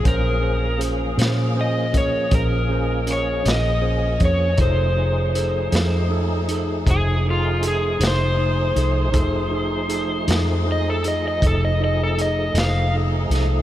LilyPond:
<<
  \new Staff \with { instrumentName = "Electric slide guitar" } { \time 12/8 \key f \phrygian \tempo 4. = 53 bes'4 r4 ees''8 des''8 bes'4 des''8 ees''4 des''8 | c''2 r4 gis'8 f'8 gis'8 c''4.~ | c''4. r8 ees''16 a'16 ees''16 ees''16 a'16 ees''16 ees''16 a'16 ees''8 f''8 r4 | }
  \new Staff \with { instrumentName = "Tine electric piano" } { \time 12/8 \key f \phrygian <des' aes' c''>8 <des' aes' c''>8 <des' aes' c''>8 <des' aes' c''>8 <des' aes' c''>8 <des' aes' bes'>8 <des' aes' c''>8 <des' aes' c''>8 <des' aes' bes'>8 <des' aes' ees''>8 <des' aes' c''>8 <des' aes' des''>8 | <ees' gis' a'>8 <ees' gis' c''>8 <ees' gis' a'>8 <ees' gis' a'>8 <ees' gis' a'>8 <ees' gis' a'>8 <ees' gis' c''>8 <ees' gis' a'>8 <ees' gis' a'>8 <ees' gis' c''>8 <ees' gis' c''>8 <ees' gis' a'>8 | <ees' gis' a'>8 <ees' gis' a'>8 <ees' gis' a'>8 <ees' gis' a'>8 <ees' gis' c''>8 <ees' gis' a'>8 <ees' gis' a'>8 <ees' gis' a'>8 <ees' gis' a'>8 <ees' gis' c''>8 <ees' gis' a'>8 <ees' gis' a'>8 | }
  \new Staff \with { instrumentName = "Tonewheel organ" } { \time 12/8 \key f \phrygian <f bes des' aes'>1. | <f a ees' gis'>1. | <f a ees' gis'>1. | }
  \new Staff \with { instrumentName = "Fingered electric bass" } { \clef bass \time 12/8 \key f \phrygian bes,,4. bes,4. bes,,4. bes,,4 f,8 | f,,4. f,4. f,,4. f,,4 c,8 | f,,4. f,4. f,,4. f,,4 c,8 | }
  \new DrumStaff \with { instrumentName = "Drums" } \drummode { \time 12/8 <hh bd>4 hh8 <hh sn>4 <hh bd>8 <hh bd>4 hh8 <hh sn>4 <hh bd>8 | <hh bd>4 hh8 <hh sn>4 hh8 <hh bd>4 hh8 <hh sn>4 hh8 | <hh bd>4 hh8 <hh sn>4 hh8 <hh bd>4 hh8 <hh sn>4 <hh sn>8 | }
>>